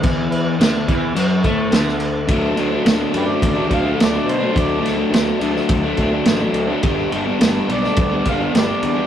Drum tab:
CC |x-x-x-x-x-x-x-x-|----------------|----------------|----------------|
RD |----------------|x-x-x-x-x-x-x-x-|x-x-x-x-x-x-x-x-|x-x-x-x-x-x-x-x-|
SD |----o-------oo--|----o-------o---|--o-o--o----o---|----o--o----o---|
BD |o-----o---o-----|o-------o-o-----|o-------o-o-----|o-------o-o-----|